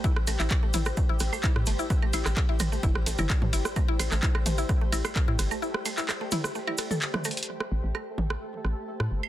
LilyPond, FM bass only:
\new Staff \with { instrumentName = "FM bass" } { \clef bass \time 4/4 \key a \minor \tempo 4 = 129 r8 a,,16 a,,16 r8 a,,8 r8 a,,16 r8 a,16 g,,16 r16 | r8 a,,16 a,,16 r8 a,,8 g,,16 a,,16 a,,16 g,,16 r16 a,16 g,,16 r16 | r8 a,,16 a,,16 r8 a,,8 r8 a,,16 r8 a,16 g,,16 r16 | r1 |
r8 a,,16 a,,16 r8 a,,8 r8 a,,16 r8 a,16 g,,16 r16 | }